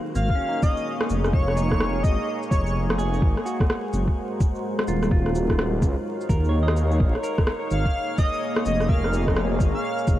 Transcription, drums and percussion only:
0.15 cabasa medium
0.15 shaker medium
0.30 kick medium
0.63 kick loud
0.63 cabasa medium
0.63 shaker medium
0.77 shaker soft
1.00 cross-stick loud
1.10 cabasa medium
1.10 shaker medium
1.24 cross-stick medium
1.24 shaker soft
1.33 kick loud
1.48 cross-stick medium
1.57 cabasa medium
1.57 shaker medium
1.72 kick medium
1.72 cross-stick medium
1.80 cross-stick loud
2.04 kick loud
2.04 cabasa medium
2.04 shaker medium
2.43 cabasa soft
2.51 kick loud
2.51 cabasa medium
2.51 shaker medium
2.66 shaker soft
2.90 cross-stick loud
2.99 cabasa medium
2.99 shaker medium
3.14 shaker soft
3.22 kick loud
3.37 cross-stick medium
3.46 cabasa medium
3.46 shaker medium
3.60 kick loud
3.60 cross-stick medium
3.70 cross-stick loud
3.94 cabasa medium
3.94 shaker medium
4.08 kick medium
4.40 kick loud
4.40 cabasa medium
4.40 shaker medium
4.55 shaker soft
4.79 cross-stick loud
4.88 cabasa medium
4.88 shaker medium
5.03 cross-stick medium
5.03 shaker soft
5.11 kick loud
5.26 cross-stick soft
5.35 cabasa medium
5.35 shaker medium
5.50 kick medium
5.50 cross-stick medium
5.59 cross-stick loud
5.82 kick loud
5.82 cabasa medium
5.82 shaker medium
6.21 cabasa soft
6.29 kick loud
6.29 cabasa medium
6.29 shaker medium
6.45 shaker soft
6.68 cross-stick loud
6.77 cabasa medium
6.77 shaker medium
6.92 shaker soft
7.00 kick loud
7.15 cross-stick medium
7.24 cabasa medium
7.24 shaker medium
7.38 kick loud
7.38 cross-stick medium
7.47 cross-stick loud
7.71 cabasa medium
7.71 shaker medium
7.86 kick medium
8.18 kick loud
8.18 cabasa medium
8.18 shaker medium
8.33 shaker soft
8.56 cross-stick loud
8.66 cabasa medium
8.66 shaker medium
8.81 cross-stick medium
8.81 shaker soft
8.89 kick loud
9.04 cross-stick medium
9.13 cabasa medium
9.13 shaker medium
9.27 kick medium
9.27 cross-stick medium
9.37 cross-stick loud
9.60 kick loud
9.60 cabasa medium
9.60 shaker medium
9.98 cabasa soft
10.07 kick loud
10.07 cabasa medium
10.07 shaker medium

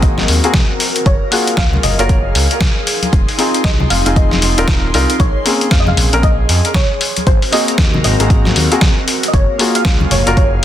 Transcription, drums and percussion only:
0.02 kick loud
0.02 closed hi-hat medium
0.18 snare soft
0.18 high conga loud
0.28 open hi-hat loud
0.44 closed hi-hat medium
0.54 kick loud
0.54 snare loud
0.54 closed hi-hat soft
0.54 low conga medium
0.80 open hi-hat loud
0.96 closed hi-hat medium
1.06 kick loud
1.06 closed hi-hat soft
1.32 open hi-hat loud
1.47 closed hi-hat medium
1.57 kick loud
1.57 snare loud
1.57 closed hi-hat soft
1.73 high conga medium
1.73 low conga medium
1.83 open hi-hat loud
1.83 low conga medium
1.99 closed hi-hat medium
2.09 kick loud
2.09 closed hi-hat medium
2.35 open hi-hat loud
2.51 closed hi-hat medium
2.60 kick loud
2.60 snare loud
2.60 closed hi-hat soft
2.60 low conga medium
2.87 open hi-hat loud
3.02 closed hi-hat medium
3.02 high conga medium
3.13 kick loud
3.13 closed hi-hat soft
3.29 open hi-hat medium
3.39 open hi-hat loud
3.54 closed hi-hat medium
3.64 kick loud
3.64 snare loud
3.64 closed hi-hat medium
3.80 high conga medium
3.80 low conga loud
3.90 open hi-hat loud
4.06 closed hi-hat medium
4.16 kick loud
4.16 closed hi-hat soft
4.31 snare soft
4.31 high conga loud
4.42 open hi-hat loud
4.58 closed hi-hat medium
4.68 kick loud
4.68 snare loud
4.68 closed hi-hat soft
4.68 low conga medium
4.94 open hi-hat loud
5.10 closed hi-hat medium
5.20 kick loud
5.20 closed hi-hat soft
5.46 open hi-hat loud
5.61 closed hi-hat medium
5.71 kick loud
5.71 snare loud
5.71 closed hi-hat soft
5.87 high conga medium
5.87 low conga medium
5.97 open hi-hat loud
5.97 low conga medium
6.13 closed hi-hat medium
6.23 kick loud
6.23 closed hi-hat soft
6.49 open hi-hat loud
6.65 closed hi-hat medium
6.74 kick loud
6.74 snare loud
6.74 closed hi-hat soft
6.74 low conga medium
7.01 open hi-hat loud
7.17 closed hi-hat medium
7.17 high conga medium
7.27 kick loud
7.27 closed hi-hat soft
7.42 open hi-hat medium
7.53 open hi-hat loud
7.68 closed hi-hat medium
7.78 kick loud
7.78 snare loud
7.78 closed hi-hat medium
7.94 high conga medium
7.94 low conga medium
8.04 open hi-hat medium
8.20 closed hi-hat medium
8.30 kick loud
8.30 closed hi-hat soft
8.45 snare soft
8.45 high conga medium
8.56 open hi-hat loud
8.72 closed hi-hat medium
8.81 kick loud
8.81 snare loud
8.81 closed hi-hat medium
8.81 low conga medium
9.08 open hi-hat loud
9.23 closed hi-hat medium
9.34 kick loud
9.34 closed hi-hat soft
9.59 open hi-hat loud
9.75 closed hi-hat medium
9.85 kick loud
9.85 snare loud
9.85 closed hi-hat medium
10.00 high conga medium
10.00 low conga medium
10.11 open hi-hat loud
10.11 low conga medium
10.27 closed hi-hat medium
10.37 kick loud
10.37 closed hi-hat medium

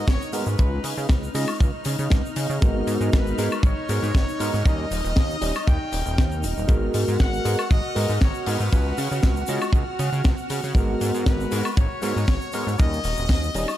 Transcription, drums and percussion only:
0.08 kick loud
0.08 snare loud
0.08 shaker medium
0.22 shaker medium
0.33 open hi-hat loud
0.33 shaker medium
0.46 shaker medium
0.58 kick loud
0.58 shaker medium
0.84 open hi-hat loud
0.84 shaker medium
0.97 shaker soft
1.09 kick loud
1.09 snare loud
1.09 shaker medium
1.23 shaker medium
1.35 open hi-hat loud
1.35 shaker medium
1.48 high woodblock medium
1.48 shaker soft
1.60 kick loud
1.60 shaker medium
1.85 open hi-hat loud
1.85 shaker medium
1.99 shaker medium
2.10 kick loud
2.10 snare loud
2.10 shaker medium
2.25 shaker soft
2.36 open hi-hat loud
2.36 shaker medium
2.50 shaker medium
2.62 kick loud
2.62 shaker medium
2.87 open hi-hat loud
2.87 shaker medium
3.01 shaker soft
3.13 kick loud
3.13 snare loud
3.13 shaker medium
3.27 shaker soft
3.38 open hi-hat loud
3.38 shaker medium
3.52 high woodblock medium
3.52 shaker soft
3.63 kick loud
3.63 shaker medium
3.89 open hi-hat loud
3.89 shaker medium
4.03 shaker medium
4.15 kick loud
4.15 snare loud
4.15 shaker medium
4.29 shaker soft
4.40 open hi-hat loud
4.40 shaker medium
4.54 shaker medium
4.66 kick loud
4.66 shaker medium
4.91 open hi-hat loud
4.91 shaker medium
5.05 shaker medium
5.16 kick loud
5.16 snare loud
5.16 shaker medium
5.30 shaker soft
5.42 open hi-hat loud
5.42 shaker medium
5.55 high woodblock medium
5.55 shaker soft
5.67 kick loud
5.67 shaker medium
5.93 open hi-hat loud
5.93 shaker medium
6.06 shaker medium
6.18 kick loud
6.18 snare loud
6.18 shaker medium
6.32 shaker soft
6.43 open hi-hat loud
6.43 shaker medium
6.57 shaker soft
6.68 kick loud
6.68 shaker medium
6.94 open hi-hat loud
6.94 shaker medium
7.08 shaker medium
7.19 kick loud
7.19 snare loud
7.19 shaker medium
7.34 shaker soft
7.45 open hi-hat loud
7.45 shaker medium
7.59 high woodblock medium
7.59 shaker soft
7.71 kick loud
7.71 shaker medium
7.96 open hi-hat loud
7.96 shaker medium
8.09 shaker medium
8.21 kick loud
8.21 snare loud
8.21 shaker medium
8.34 shaker soft
8.46 open hi-hat loud
8.46 shaker medium
8.60 shaker medium
8.72 kick loud
8.72 shaker medium
8.98 open hi-hat loud
8.98 shaker medium
9.12 shaker medium
9.23 kick loud
9.23 snare loud
9.23 shaker medium
9.36 shaker soft
9.47 open hi-hat loud
9.47 shaker medium
9.62 high woodblock medium
9.62 shaker medium
9.73 kick loud
9.73 shaker medium
9.99 open hi-hat loud
9.99 shaker medium
10.13 shaker medium
10.24 kick loud
10.24 snare loud
10.24 shaker medium
10.38 shaker medium
10.50 open hi-hat loud
10.50 shaker medium
10.64 shaker soft
10.75 kick loud
10.75 shaker medium
11.01 open hi-hat medium
11.01 shaker loud
11.14 shaker medium
11.26 kick loud
11.26 snare loud
11.26 shaker medium
11.40 shaker soft
11.52 open hi-hat loud
11.52 shaker medium
11.65 high woodblock medium
11.65 shaker medium
11.77 kick loud
11.77 shaker medium
12.02 open hi-hat loud
12.02 shaker medium
12.17 shaker medium
12.28 kick loud
12.28 snare loud
12.28 shaker medium
12.41 shaker soft
12.53 open hi-hat loud
12.53 shaker medium
12.68 shaker medium
12.79 kick loud
12.79 shaker medium
12.93 shaker medium
13.04 open hi-hat loud
13.04 shaker medium
13.17 shaker medium
13.29 kick loud
13.29 snare loud
13.29 shaker medium
13.43 shaker medium
13.54 open hi-hat loud
13.54 shaker medium
13.68 high woodblock medium
13.68 shaker medium

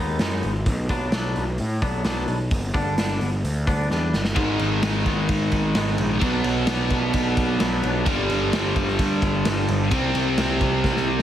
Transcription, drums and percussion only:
0.19 snare loud
0.19 open hi-hat medium
0.43 open hi-hat soft
0.66 kick medium
0.66 open hi-hat medium
0.89 kick medium
0.89 snare soft
0.89 open hi-hat medium
1.12 snare loud
1.12 open hi-hat medium
1.36 open hi-hat soft
1.58 open hi-hat medium
1.82 kick medium
1.82 open hi-hat soft
2.04 snare medium
2.04 open hi-hat medium
2.28 open hi-hat soft
2.51 kick loud
2.51 open hi-hat medium
2.74 kick medium
2.74 open hi-hat medium
2.98 snare loud
2.98 open hi-hat medium
3.21 open hi-hat soft
3.45 open hi-hat medium
3.67 kick medium
3.67 open hi-hat soft
3.91 snare medium
4.13 snare medium
4.25 snare medium
4.36 kick loud
4.36 ride medium
4.59 ride medium
4.83 snare loud
4.83 ride medium
5.06 kick medium
5.06 ride medium
5.29 kick medium
5.29 ride medium
5.52 kick medium
5.52 ride medium
5.75 snare loud
5.75 ride medium
5.98 ride medium
6.21 kick loud
6.21 ride medium
6.44 ride medium
6.67 snare loud
6.67 ride loud
6.90 kick medium
6.90 ride medium
7.13 kick medium
7.13 ride medium
7.37 kick medium
7.37 ride medium
7.60 snare loud
7.60 ride medium
7.83 ride medium
8.06 kick loud
8.06 ride medium
8.30 ride medium
8.53 snare loud
8.53 ride medium
8.76 kick medium
8.76 ride medium
8.88 snare soft
8.99 kick medium
8.99 ride medium
9.22 kick medium
9.22 ride medium
9.45 snare loud
9.45 ride medium
9.68 ride medium
9.91 kick loud
9.91 ride loud
10.15 ride medium
10.38 snare loud
10.38 ride loud
10.61 kick medium
10.61 ride medium
10.84 kick medium
10.84 snare medium
10.96 snare medium

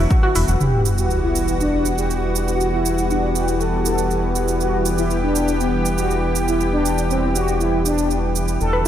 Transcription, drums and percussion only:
0.11 kick loud
0.11 shaker soft
0.35 open hi-hat loud
0.35 shaker medium
0.48 shaker soft
0.61 shaker soft
0.85 shaker medium
0.98 shaker soft
1.10 shaker soft
1.35 shaker medium
1.48 shaker soft
1.60 shaker soft
1.85 shaker medium
1.98 shaker soft
2.10 shaker soft
2.35 shaker medium
2.48 shaker soft
2.60 shaker soft
2.85 shaker medium
2.98 shaker soft
3.10 shaker soft
3.35 shaker medium
3.48 shaker soft
3.61 shaker soft
3.85 shaker medium
3.98 shaker soft
4.10 shaker soft
4.35 shaker medium
4.48 shaker soft
4.60 shaker soft
4.85 shaker medium
4.98 shaker soft
5.10 shaker soft
5.35 shaker medium
5.48 shaker soft
5.60 shaker soft
5.85 shaker medium
5.98 shaker soft
6.10 shaker soft
6.35 shaker medium
6.48 shaker soft
6.60 shaker soft
6.85 shaker medium
6.98 shaker soft
7.11 shaker soft
7.36 shaker medium
7.48 shaker soft
7.61 shaker soft
7.86 shaker medium
7.98 shaker soft
8.11 shaker soft
8.36 shaker medium
8.48 shaker soft
8.61 shaker soft

